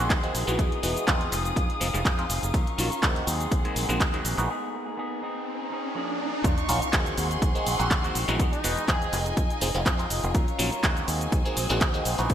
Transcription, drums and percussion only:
0.10 kick loud
0.10 clap loud
0.10 closed hi-hat medium
0.10 tambourine soft
0.10 shaker soft
0.24 closed hi-hat soft
0.24 tambourine soft
0.35 open hi-hat loud
0.35 tambourine medium
0.35 shaker medium
0.47 closed hi-hat soft
0.47 tambourine soft
0.47 shaker soft
0.59 kick loud
0.59 closed hi-hat medium
0.59 tambourine soft
0.59 shaker soft
0.72 closed hi-hat soft
0.72 tambourine soft
0.83 open hi-hat loud
0.83 tambourine medium
0.83 shaker medium
0.96 closed hi-hat soft
0.96 tambourine soft
0.96 shaker soft
1.08 kick loud
1.08 clap loud
1.08 closed hi-hat medium
1.08 shaker soft
1.21 closed hi-hat soft
1.21 tambourine soft
1.32 clap soft
1.32 open hi-hat loud
1.32 tambourine medium
1.32 shaker medium
1.45 closed hi-hat soft
1.45 tambourine soft
1.45 shaker soft
1.56 kick loud
1.56 closed hi-hat medium
1.56 tambourine soft
1.56 shaker soft
1.69 closed hi-hat soft
1.69 tambourine soft
1.81 open hi-hat loud
1.81 tambourine medium
1.81 shaker medium
1.94 closed hi-hat soft
1.94 tambourine soft
1.94 shaker soft
2.05 kick loud
2.05 clap loud
2.05 closed hi-hat medium
2.05 tambourine soft
2.05 shaker soft
2.18 closed hi-hat soft
2.18 tambourine soft
2.30 open hi-hat loud
2.30 tambourine medium
2.30 shaker medium
2.43 closed hi-hat soft
2.43 tambourine soft
2.43 shaker soft
2.54 kick loud
2.54 closed hi-hat medium
2.54 tambourine soft
2.54 shaker soft
2.66 closed hi-hat soft
2.66 tambourine soft
2.79 open hi-hat medium
2.79 tambourine medium
2.79 shaker medium
2.91 closed hi-hat soft
2.91 tambourine soft
2.91 shaker soft
3.03 kick loud
3.03 clap loud
3.03 closed hi-hat medium
3.03 tambourine soft
3.03 shaker soft
3.16 closed hi-hat soft
3.16 tambourine soft
3.27 open hi-hat medium
3.27 tambourine medium
3.27 shaker medium
3.41 closed hi-hat soft
3.41 tambourine soft
3.41 shaker soft
3.51 kick loud
3.51 closed hi-hat medium
3.51 tambourine soft
3.51 shaker soft
3.65 closed hi-hat soft
3.65 tambourine soft
3.76 open hi-hat medium
3.76 tambourine medium
3.76 shaker medium
3.89 closed hi-hat soft
3.89 tambourine soft
3.89 shaker soft
4.00 kick loud
4.00 clap loud
4.00 closed hi-hat medium
4.00 tambourine soft
4.00 shaker soft
4.14 closed hi-hat soft
4.14 tambourine soft
4.25 open hi-hat medium
4.25 tambourine medium
4.25 shaker medium
4.38 closed hi-hat soft
4.38 tambourine soft
4.38 shaker soft
6.44 kick loud
6.44 closed hi-hat loud
6.44 shaker soft
6.58 closed hi-hat soft
6.58 shaker soft
6.69 open hi-hat loud
6.69 shaker medium
6.82 closed hi-hat soft
6.82 shaker soft
6.93 kick loud
6.93 clap loud
6.93 closed hi-hat loud
6.93 shaker soft
7.06 closed hi-hat soft
7.06 shaker soft
7.18 open hi-hat loud
7.18 shaker medium
7.31 closed hi-hat soft
7.31 shaker soft
7.42 kick loud
7.42 closed hi-hat loud
7.42 shaker soft
7.56 closed hi-hat soft
7.56 shaker soft
7.67 open hi-hat loud
7.67 shaker medium
7.80 closed hi-hat soft
7.80 shaker soft
7.91 kick loud
7.91 clap loud
7.91 closed hi-hat loud
7.91 shaker soft
8.04 closed hi-hat soft
8.04 shaker soft
8.15 open hi-hat loud
8.15 shaker medium
8.29 closed hi-hat soft
8.29 shaker soft
8.39 kick loud
8.39 closed hi-hat medium
8.39 shaker soft
8.53 closed hi-hat soft
8.53 shaker soft
8.64 open hi-hat loud
8.64 shaker medium
8.77 closed hi-hat soft
8.77 shaker soft
8.88 kick loud
8.88 clap loud
8.88 closed hi-hat medium
8.88 shaker soft
9.02 closed hi-hat soft
9.02 shaker soft
9.13 clap soft
9.13 open hi-hat loud
9.13 shaker medium
9.26 closed hi-hat soft
9.26 shaker soft
9.37 kick loud
9.37 closed hi-hat medium
9.37 shaker soft
9.50 closed hi-hat soft
9.50 shaker soft
9.61 open hi-hat loud
9.61 shaker medium
9.75 closed hi-hat soft
9.75 shaker soft
9.86 kick loud
9.86 clap loud
9.86 closed hi-hat medium
9.86 shaker soft
9.99 closed hi-hat soft
9.99 shaker soft
10.10 open hi-hat loud
10.10 shaker medium
10.24 closed hi-hat soft
10.24 shaker soft
10.35 kick loud
10.35 closed hi-hat medium
10.35 shaker soft
10.48 closed hi-hat soft
10.48 shaker soft
10.59 open hi-hat loud
10.59 shaker medium
10.72 closed hi-hat soft
10.72 shaker soft
10.83 kick loud
10.83 clap loud
10.83 closed hi-hat loud
10.83 shaker soft
10.97 closed hi-hat soft
10.97 shaker soft
11.08 open hi-hat loud
11.08 shaker medium
11.21 closed hi-hat soft
11.21 shaker soft
11.32 kick loud
11.32 closed hi-hat medium
11.32 shaker soft
11.46 closed hi-hat soft
11.46 shaker soft
11.57 open hi-hat loud
11.57 shaker medium
11.70 closed hi-hat soft
11.70 shaker soft
11.81 kick loud
11.81 clap loud
11.81 closed hi-hat medium
11.81 shaker soft
11.94 closed hi-hat soft
11.94 shaker soft
12.05 open hi-hat loud
12.05 shaker medium
12.19 closed hi-hat soft
12.19 shaker soft
12.30 kick loud
12.30 closed hi-hat medium
12.30 shaker soft

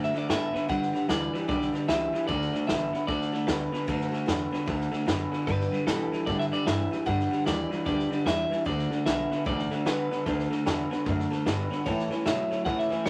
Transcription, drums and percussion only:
0.02 snare soft
0.15 snare soft
0.30 snare loud
0.30 hi-hat pedal medium
0.55 snare soft
0.69 kick loud
0.69 snare soft
0.82 snare soft
0.94 snare soft
1.09 snare loud
1.09 hi-hat pedal loud
1.34 snare soft
1.49 kick loud
1.49 snare soft
1.61 snare soft
1.74 snare soft
1.89 snare loud
1.89 hi-hat pedal medium
2.14 snare soft
2.29 kick loud
2.29 snare soft
2.41 snare soft
2.54 snare soft
2.69 snare loud
2.69 hi-hat pedal medium
2.94 snare soft
3.08 kick loud
3.08 snare soft
3.21 snare soft
3.33 snare soft
3.48 snare loud
3.48 hi-hat pedal medium
3.73 snare soft
3.88 kick loud
3.88 snare soft
4.00 snare soft
4.13 snare soft
4.28 snare loud
4.28 hi-hat pedal medium
4.53 snare soft
4.68 kick loud
4.68 snare soft
4.80 snare soft
4.93 snare soft
5.08 snare loud
5.08 hi-hat pedal medium
5.33 snare soft
5.47 kick loud
5.47 snare soft
5.60 snare soft
5.73 snare soft
5.87 snare loud
5.87 hi-hat pedal medium
6.12 snare soft
6.27 kick loud
6.27 snare soft
6.40 snare soft
6.52 snare soft
6.67 snare loud
6.67 hi-hat pedal medium
6.92 snare soft
7.07 kick loud
7.07 snare soft
7.19 snare soft
7.32 snare soft
7.46 snare loud
7.46 hi-hat pedal medium
7.71 snare soft
7.86 kick loud
7.86 snare soft
7.99 snare soft
8.11 snare soft
8.27 snare loud
8.27 hi-hat pedal loud
8.52 snare soft
8.66 kick loud
8.66 snare soft
8.78 snare soft
8.91 snare soft
9.06 snare loud
9.06 hi-hat pedal loud
9.31 snare soft
9.46 kick loud
9.46 snare soft
9.59 snare soft
9.71 snare soft
9.86 snare loud
9.86 hi-hat pedal medium
10.11 snare soft
10.26 kick loud
10.26 snare soft
10.39 snare soft
10.51 snare soft
10.66 snare loud
10.66 hi-hat pedal medium
10.92 snare soft
11.06 kick loud
11.06 snare soft
11.19 snare soft
11.32 snare soft
11.46 snare loud
11.46 hi-hat pedal medium
11.72 snare soft
11.86 kick loud
11.86 snare soft
11.99 snare soft
12.11 snare soft
12.26 snare loud
12.26 hi-hat pedal medium
12.51 snare soft
12.66 kick loud
12.66 snare soft
12.79 snare soft
12.91 snare soft
13.06 snare loud
13.06 hi-hat pedal medium

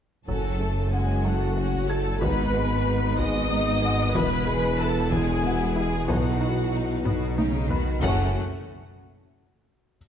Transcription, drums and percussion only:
0.28 taiko medium
1.73 taiko soft
2.22 taiko medium
3.18 taiko medium
4.15 taiko medium
5.12 taiko medium
6.09 taiko medium
7.06 taiko low-mid medium
7.38 taiko high medium
7.70 taiko low medium
8.02 taiko loud

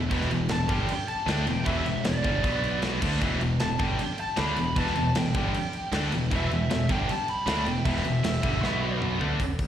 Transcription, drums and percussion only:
0.11 kick loud
0.11 crash medium
0.21 snare soft
0.31 crash medium
0.49 snare loud
0.49 crash medium
0.69 kick loud
0.69 crash medium
0.89 crash medium
1.08 crash medium
1.28 snare loud
1.28 crash medium
1.47 crash medium
1.66 kick loud
1.66 crash medium
1.86 crash medium
2.04 snare loud
2.04 crash medium
2.24 kick loud
2.24 crash medium
2.44 kick loud
2.44 crash medium
2.63 crash medium
2.82 snare loud
2.82 crash medium
3.02 kick loud
3.02 crash loud
3.21 kick loud
3.21 crash medium
3.41 crash medium
3.60 snare loud
3.60 crash medium
3.79 kick loud
3.79 crash medium
3.99 crash medium
4.18 crash medium
4.36 snare loud
4.36 crash medium
4.56 crash medium
4.76 kick loud
4.76 crash medium
4.87 snare soft
4.95 crash medium
5.15 snare loud
5.15 crash medium
5.35 kick loud
5.35 crash medium
5.54 crash medium
5.73 crash medium
5.92 snare loud
5.92 crash medium
6.12 crash medium
6.31 kick loud
6.31 crash medium
6.51 crash medium
6.70 snare loud
6.70 crash medium
6.89 kick loud
6.89 crash medium
7.09 crash medium
7.28 crash medium
7.47 snare loud
7.47 crash medium
7.66 crash medium
7.85 kick loud
7.85 crash medium
7.97 snare soft
8.05 crash medium
8.24 snare loud
8.24 crash medium
8.43 kick loud
8.43 crash medium
8.64 snare medium
9.02 mid tom medium
9.21 floor tom loud
9.40 kick loud
9.40 open hi-hat medium
9.59 kick medium
9.59 open hi-hat soft

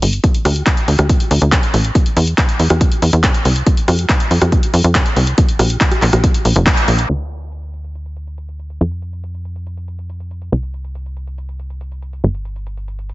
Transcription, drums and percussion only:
0.02 open hi-hat loud
0.13 closed hi-hat soft
0.24 kick loud
0.24 closed hi-hat medium
0.34 closed hi-hat soft
0.45 cross-stick medium
0.45 open hi-hat medium
0.56 closed hi-hat soft
0.67 kick loud
0.67 clap loud
0.67 closed hi-hat medium
0.77 closed hi-hat soft
0.88 open hi-hat loud
0.99 cross-stick medium
0.99 closed hi-hat soft
1.09 kick loud
1.09 closed hi-hat medium
1.20 closed hi-hat medium
1.31 open hi-hat loud
1.42 closed hi-hat soft
1.52 kick loud
1.52 clap loud
1.52 closed hi-hat medium
1.63 closed hi-hat soft
1.74 open hi-hat loud
1.85 closed hi-hat soft
1.95 kick loud
1.95 closed hi-hat medium
2.06 closed hi-hat soft
2.17 open hi-hat loud
2.27 closed hi-hat soft
2.38 kick loud
2.38 clap loud
2.38 closed hi-hat medium
2.49 closed hi-hat soft
2.59 open hi-hat medium
2.70 cross-stick medium
2.70 closed hi-hat soft
2.81 kick loud
2.81 closed hi-hat medium
2.92 closed hi-hat soft
3.02 open hi-hat medium
3.13 closed hi-hat medium
3.24 kick loud
3.24 clap loud
3.24 closed hi-hat medium
3.34 closed hi-hat soft
3.45 open hi-hat loud
3.56 closed hi-hat medium
3.67 kick loud
3.67 closed hi-hat medium
3.77 closed hi-hat medium
3.88 cross-stick medium
3.88 open hi-hat medium
3.99 closed hi-hat medium
4.09 kick loud
4.09 clap loud
4.09 closed hi-hat medium
4.20 closed hi-hat medium
4.31 open hi-hat medium
4.42 cross-stick medium
4.42 closed hi-hat medium
4.52 kick loud
4.52 closed hi-hat medium
4.63 closed hi-hat medium
4.74 open hi-hat loud
4.84 closed hi-hat medium
4.95 kick loud
4.95 clap loud
4.95 closed hi-hat medium
5.06 closed hi-hat soft
5.16 open hi-hat medium
5.27 closed hi-hat medium
5.38 kick loud
5.38 closed hi-hat loud
5.49 closed hi-hat medium
5.59 cross-stick medium
5.59 open hi-hat loud
5.70 closed hi-hat medium
5.81 kick loud
5.81 clap loud
5.81 closed hi-hat medium
5.92 cross-stick medium
5.92 closed hi-hat medium
6.02 clap medium
6.02 open hi-hat loud
6.13 cross-stick medium
6.13 closed hi-hat medium
6.24 kick loud
6.24 closed hi-hat medium
6.34 closed hi-hat medium
6.45 open hi-hat loud
6.56 closed hi-hat medium
6.67 kick loud
6.67 clap loud
6.67 closed hi-hat medium
6.77 closed hi-hat medium
6.88 open hi-hat loud
6.99 closed hi-hat medium
7.09 closed hi-hat medium
7.09 crash medium
7.31 closed hi-hat medium
7.42 closed hi-hat soft
7.52 closed hi-hat medium
7.63 closed hi-hat soft
7.74 closed hi-hat medium
7.84 closed hi-hat soft
7.95 closed hi-hat medium
8.06 closed hi-hat soft
8.17 closed hi-hat medium
8.27 closed hi-hat soft
8.38 closed hi-hat medium
8.49 closed hi-hat soft
8.59 closed hi-hat medium
8.70 closed hi-hat soft
8.81 closed hi-hat medium
8.91 closed hi-hat soft
9.02 closed hi-hat medium
9.13 closed hi-hat soft
9.24 closed hi-hat medium
9.34 closed hi-hat soft
9.45 closed hi-hat medium
9.56 closed hi-hat soft
9.67 closed hi-hat medium
9.77 closed hi-hat soft
9.88 closed hi-hat medium
9.99 closed hi-hat soft
10.10 closed hi-hat medium
10.20 closed hi-hat soft
10.31 closed hi-hat medium
10.42 closed hi-hat soft
10.52 closed hi-hat medium
10.63 closed hi-hat soft
10.74 closed hi-hat medium
10.85 closed hi-hat soft
10.95 closed hi-hat medium
11.06 closed hi-hat soft
11.17 closed hi-hat medium
11.27 closed hi-hat soft
11.38 closed hi-hat medium
11.49 closed hi-hat soft
11.60 closed hi-hat medium
11.70 closed hi-hat soft
11.81 closed hi-hat medium
11.92 closed hi-hat soft
12.02 closed hi-hat medium
12.13 closed hi-hat soft
12.24 closed hi-hat medium
12.35 closed hi-hat soft
12.45 closed hi-hat medium
12.56 closed hi-hat soft
12.67 closed hi-hat medium
12.77 closed hi-hat soft
12.88 closed hi-hat medium
12.99 closed hi-hat soft
13.09 closed hi-hat medium

